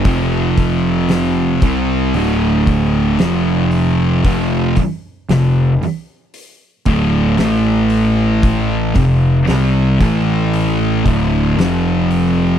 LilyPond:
<<
  \new Staff \with { instrumentName = "Distorted electric guitar" } { \clef bass \time 4/4 \key f \major \tempo 4 = 57 <f, c f>4. <c g c'>8 <d, a, d>4 <f, c f>4 | <f, c f>8 r8 <f, c>8 r4 <d, a, d>8 <a, e a>4~ | <a, e a>8 <f, c>8 <c g c'>8 <a, e a>4 <d, a, d>8 <f, c f>4 | }
  \new Staff \with { instrumentName = "Distorted electric guitar" } { \clef bass \time 4/4 \key f \major <f, c f>4. <c g c'>8 <d, a, d>4 <f, c f>4 | <f, c f>8 r8 <f, c>8 r4 <d, a, d>8 <a, e a>4~ | <a, e a>8 <f, c>8 <c g c'>8 <a, e a>4 <d, a, d>8 <f, c f>4 | }
  \new Staff \with { instrumentName = "Picked electric bass" } { \clef bass \time 4/4 \key f \major f,,4. c,8 d,,4 f,,4 | f,,8 r8 f,,8 r4 d,,8 a,,4~ | a,,8 f,,8 c,8 a,,4 d,,8 f,,4 | }
  \new DrumStaff \with { instrumentName = "Drums" } \drummode { \time 4/4 <hho bd>8 <hho bd>8 <hho sn>8 <hho bd>8 hho8 <hho bd>8 <hho sn>8 hho8 | <hho bd>8 <hho bd>8 <hho sn>8 hho8 hho8 <hho bd>8 <hho sn>8 hho8 | <hho bd>8 <hho bd>8 <hho sn>8 <hho bd>8 hho8 <hho bd>8 <hho sn>8 hho8 | }
>>